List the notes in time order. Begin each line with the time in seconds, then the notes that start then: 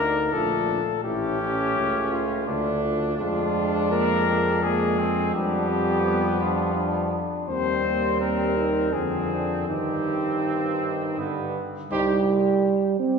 Already playing: D2 A3 D4 A#4
0.00 D#4
0.32 A#1 A3 D4 F4 A4
1.04 A1 A3 C#4 E4 G4
1.41 C#4
1.77 C#2
2.12 F4
2.47 D2 A3 D4
2.84 F4
3.18 F2 G#3 D4 F4
3.91 A#3 A#4
4.27 G#3
4.63 G#3 A#3 D4 G#4
4.98 C4
5.34 F2 G3 B3 D4 G4
5.70 C4
6.05 B3
6.41 D4 F4
6.76 D4
7.48 D#2 G3 C4 C5
7.85 A#3
8.20 C4 A#4
8.57 D#4
8.93 F2 D3 C4 G#4
9.30 D4
9.68 G2 D#3 C4 D#4 G4
11.17 G2 D3 B3
11.90 C2 G3 D#4 G4 C5
12.99 C4